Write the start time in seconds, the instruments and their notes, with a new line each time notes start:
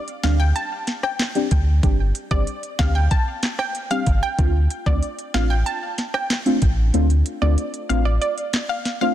0.08 closed hi-hat
0.23 sub bass D2, synth stab G3 C4 D4 G4, synth pluck F5, snare, clap, closed hi-hat
0.40 synth pluck G5
0.56 synth pluck A5, closed hi-hat
0.87 snare, closed hi-hat
1.03 synth pluck G5, cross-stick
1.19 snare, clap, closed hi-hat
1.35 synth stab G3 C4 D4 G4, closed hi-hat
1.51 sub bass D2, kick, closed hi-hat
1.83 sub bass G1, synth stab G3 C4 D4 G4, kick, closed hi-hat
2.15 closed hi-hat
2.31 sub bass G1, synth stab G3 C4 D4 G4, synth pluck D5, kick
2.47 closed hi-hat
2.63 closed hi-hat
2.79 sub bass D2, synth stab G3 C4 D4 G4, synth pluck F5, kick, snare, clap, closed hi-hat
2.95 synth pluck G5
3.11 synth pluck A5, kick, closed hi-hat
3.43 snare, clap, closed hi-hat
3.59 synth pluck G5, cross-stick
3.75 closed hi-hat
3.90 synth stab G3 C4 D4 G4, synth pluck F5, closed hi-hat
4.06 sub bass G1, kick, closed hi-hat
4.23 synth pluck G5
4.38 sub bass D2, synth stab A3 C4 D4 F4, kick, closed hi-hat
4.70 closed hi-hat
4.86 sub bass D2, synth stab A3 C4 D4 F4, synth pluck D5, kick
5.03 closed hi-hat
5.19 closed hi-hat
5.34 sub bass A1, synth stab A3 C4 D4 F4, synth pluck F5, snare, clap, closed hi-hat
5.50 synth pluck G5
5.66 synth pluck A5, closed hi-hat
5.98 snare, closed hi-hat
6.14 synth pluck G5, cross-stick
6.30 snare, clap, closed hi-hat
6.46 synth stab A3 C4 D4 F4, closed hi-hat
6.62 sub bass A1, kick, closed hi-hat
6.94 sub bass D2, synth stab A3 C4 D4 F4, closed hi-hat
7.10 closed hi-hat
7.26 closed hi-hat
7.41 sub bass D2, synth stab A3 C4 D4 F4, synth pluck D5
7.58 closed hi-hat
7.74 closed hi-hat
7.89 sub bass A1, synth stab A3 C4 D4 F4, synth pluck F5, closed hi-hat
8.05 synth pluck D5
8.21 synth pluck D5, closed hi-hat
8.38 closed hi-hat
8.53 snare, clap, closed hi-hat
8.69 synth pluck F5
8.85 snare, closed hi-hat
9.01 synth stab A3 C4 D4 F4, synth pluck F5